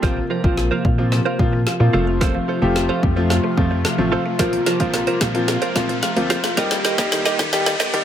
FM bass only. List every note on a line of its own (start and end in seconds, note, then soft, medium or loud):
0.03 0.21 A#1 loud
0.44 0.71 A#1 loud
0.85 1.21 A#2 medium
1.39 1.66 A#2 medium
1.80 1.89 A#2 medium
1.94 2.39 F1 loud
2.62 2.89 F1 loud
3.03 3.39 F2 medium
3.58 3.85 F2 medium
3.98 4.16 A1 loud
4.39 4.57 A#1 loud
4.80 5.07 A#1 loud
5.21 5.57 A#2 medium
5.76 6.03 A#2 medium
6.17 6.35 D2 loud
6.57 6.75 D#2 loud
6.99 7.26 D#2 loud
7.39 7.75 D#3 medium
7.93 8.04 D#3 loud